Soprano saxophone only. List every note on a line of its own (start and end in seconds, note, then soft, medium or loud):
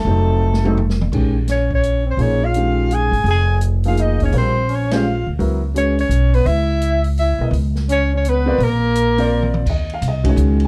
0.00 1.01 A4 medium
1.51 1.72 C#5 medium
1.75 2.05 C#5 medium
2.11 2.23 C5 medium
2.21 2.46 C#5 medium
2.45 2.96 F5 medium
2.94 3.28 G#5 medium
3.31 3.61 G#5 loud
3.88 4.04 F5 medium
4.02 4.22 D#5 medium
4.25 4.34 C#5 medium
4.38 4.76 C5 medium
4.75 4.98 C#5 medium
4.97 5.29 F5 medium
5.78 5.98 C#5 medium
6.00 6.36 C#5 medium
6.34 6.48 B4 medium
6.47 7.04 E5 loud
7.19 7.45 E5 medium
7.92 8.12 C#5 loud
8.17 8.31 C#5 medium
8.29 8.65 B4 loud
8.64 9.55 A#4 loud